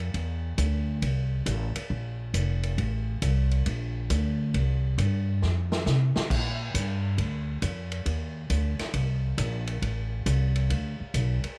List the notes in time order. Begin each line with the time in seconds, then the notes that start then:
Already playing: F2
0.14 E2, kick, ride
0.58 D2, kick, hi-hat pedal, ride
1.02 C2, kick, ride
1.46 A1, kick, hi-hat pedal, ride
1.76 muted upright bass stroke, ride
1.90 A#1, kick
2.34 F1, kick, hi-hat pedal, ride
2.63 ride
2.78 A1, kick, ride
3.22 C2, kick, hi-hat pedal, ride
3.51 ride
3.66 A#1, kick, ride
4.10 D2, kick, hi-hat pedal, ride
4.54 C2, kick, ride
4.98 G2, kick, hi-hat pedal, ride
5.42 F2, snare
5.72 snare
5.86 C3, snare, hi-hat pedal
6.16 muted upright bass stroke, snare
6.30 A#2, kick, crash
6.74 G2, kick, hi-hat pedal, ride
7.18 D2, kick, ride
7.62 F2, kick, hi-hat pedal, ride
7.92 ride
8.06 D#2, kick, ride
8.50 D2, kick, hi-hat pedal, ride
8.79 muted upright bass stroke, snare, ride
8.94 C2, kick, ride
9.38 A#1, kick, hi-hat pedal, ride
9.67 ride
9.82 A1, kick, ride
10.26 C2, kick, hi-hat pedal, ride
10.55 ride
10.70 D2, kick, ride
11.00 muted upright bass stroke
11.14 B1, kick, hi-hat pedal, ride
11.44 muted upright bass stroke, ride